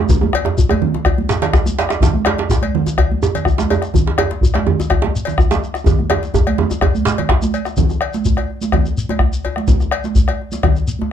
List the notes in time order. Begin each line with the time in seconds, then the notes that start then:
0.09 bombo low, djembe bass, low conga, shekere
0.21 bombo rim, djembe slap, djembe tone, high conga
0.33 bombo rim, cowbell, djembe slap, djembe tone
0.45 djembe slap, djembe tone, high conga
0.58 bombo low, djembe bass, shekere
0.69 bombo rim, cowbell, djembe tone, high conga
0.82 low conga
0.94 djembe slap, djembe tone
1.05 bombo rim, bombo low, cowbell, djembe bass
1.18 high conga
1.29 djembe slap, shekere
1.42 cowbell, djembe slap, low conga, shekere
1.53 bombo rim, bombo low, djembe slap, high conga, djembe bass, shekere
1.66 bombo rim, djembe slap, djembe tone, high conga, shekere
1.78 cowbell, djembe slap, high conga, shekere
1.89 bombo rim, djembe slap, shekere
2.01 bombo low, djembe slap, low conga, djembe bass, shekere
2.13 bombo rim, djembe slap, high conga
2.25 bombo rim, cowbell, djembe slap, djembe tone
2.38 djembe slap, high conga
2.49 bombo low, djembe slap, djembe bass, shekere
2.62 cowbell, high conga
2.75 low conga
2.86 djembe slap, djembe tone, shekere
2.98 bombo rim, bombo low, cowbell, djembe bass
3.12 high conga
3.23 djembe tone, shekere
3.35 cowbell, djembe slap, low conga, shekere
3.45 bombo rim, bombo low, high conga, djembe bass, shekere
3.58 bombo rim, djembe slap, djembe tone, high conga, shekere
3.70 cowbell, high conga, djembe tone, shekere
3.82 bombo rim, djembe slap, shekere
3.94 bombo low, low conga, djembe bass, shekere
4.07 bombo rim, djembe slap
4.18 bombo rim, cowbell, djembe slap, djembe tone
4.31 djembe slap, high conga
4.41 bombo low, djembe bass, shekere
4.54 bombo rim, cowbell, djembe slap, high conga
4.67 djembe tone, low conga
4.80 djembe slap, djembe tone, shekere
4.90 bombo rim, bombo low, cowbell, djembe bass
5.02 djembe slap, high conga
5.16 shekere
5.25 cowbell, djembe slap, low conga, shekere
5.38 bombo rim, bombo low, high conga, djembe bass, shekere
5.51 bombo rim, djembe slap, high conga, djembe tone, shekere
5.63 high conga, shekere
5.74 bombo rim, djembe slap, shekere
5.86 bombo low, djembe tone, djembe bass, low conga, shekere
5.99 bombo rim, high conga
6.10 bombo rim, cowbell, djembe tone, high conga
6.23 djembe slap, high conga, shekere
6.34 bombo low, djembe slap, djembe tone, high conga, djembe bass, shekere
6.47 bombo rim, cowbell, high conga
6.58 bombo rim, djembe tone, low conga
6.70 bombo rim, djembe slap, djembe tone, high conga, shekere
6.81 bombo rim, bombo low, cowbell, djembe slap, djembe tone, djembe bass
6.95 djembe slap, high conga, shekere
7.05 bombo rim, djembe slap, shekere
7.18 cowbell, djembe slap, low conga
7.29 bombo rim, bombo low, djembe slap, djembe bass
7.42 high conga, djembe tone, shekere
7.54 cowbell, high conga, shekere
7.65 bombo rim, djembe slap, high conga, shekere
7.77 bombo low, djembe slap, low conga, djembe bass, shekere
7.90 bombo rim, djembe tone, shekere
8.01 bombo rim, cowbell
8.13 djembe slap, high conga, shekere
8.25 bombo low, djembe slap, djembe bass, shekere
8.37 bombo rim, cowbell, djembe tone
8.50 djembe slap
8.61 djembe slap, high conga, shekere
8.72 bombo rim, bombo low, cowbell, djembe tone, low conga, djembe bass
8.86 shekere
8.97 djembe slap, high conga, shekere
9.09 cowbell, djembe slap, high conga, djembe tone
9.19 bombo rim, bombo low, djembe slap, djembe bass
9.33 high conga, shekere
9.44 bombo rim, cowbell, djembe tone
9.56 bombo rim, djembe slap, high conga
9.68 bombo low, djembe slap, low conga, djembe bass, shekere
9.80 bombo rim, djembe tone, shekere
9.91 bombo rim, cowbell
10.04 djembe slap, high conga, shekere
10.15 bombo low, djembe slap, djembe bass, shekere
10.28 bombo rim, cowbell, djembe tone
10.42 djembe slap
10.52 djembe slap, high conga, shekere
10.63 bombo rim, bombo low, cowbell, djembe tone, low conga, djembe bass
10.76 shekere
10.88 djembe slap, high conga, shekere
10.99 djembe slap, high conga, djembe tone